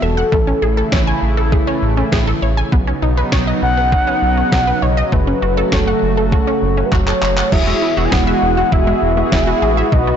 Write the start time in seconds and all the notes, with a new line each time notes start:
Already playing: E3 G3 B3 F#4
0.02 E1 A4 E5
0.17 F#5
0.32 A1 C#3 E3 A3 E4, kick
0.47 C#4
0.62 A1 G#4
0.77 A4
0.92 A1 C#5, kick, snare
1.07 G#5
1.22 A1
1.37 A4
1.52 G#4, kick
1.67 C#4
1.82 A1
1.97 C#4
2.12 A1 G#4, kick, snare
2.27 A4
2.42 A1 C#5
2.57 G#5
2.72 B1 C#3 F#3 B3 D#4, kick
2.87 C#4
3.02 B1 D#4
3.17 B4
3.32 B1 C#5, kick, snare
3.47 D#5
3.62 B1 F#5
3.77 B4
3.92 D#4, kick
4.07 C#4
4.22 B1
4.37 C#4
4.52 B1 D#4, kick, snare
4.67 B4
4.82 B1 C#5 D#5
4.97 D#5
5.12 F#1 A3 F#4 B4, kick
5.27 C#4
5.42 F#1 F#4
5.57 A4
5.72 F#1 A4 C#5, kick, snare
5.87 F#5
6.02 F#1
6.17 A4
6.32 F#4, kick
6.47 C#4
6.62 F#1
6.77 C#4
6.86 B4
6.92 F#1 F#4 C#5, kick, clap
7.07 A4, clap
7.22 F#1 C#5, clap
7.37 F#5, clap
7.52 E1 E3 F#3 G#3 B3 E4 F#4 G#4 E5, kick, crash
7.67 G#3
7.82 E4
7.97 E1 E4 F#4 G#4
8.05 G#5
8.12 E1 G#4 F#5, kick, snare
8.27 E4 F#4 G#4 E5
8.42 E1
8.57 F#4
8.72 E1 E4 F#4 G#4 E5, kick
8.87 G#3
9.02 E1
9.17 G#3 E4 F#4 G#4
9.32 E1 E4, kick, snare
9.47 E4 F#4 G#4
9.62 A1 G#4
9.77 E5
9.92 B1 D#3 F#3 D#4 F#4 B4 D#5, kick
10.07 B3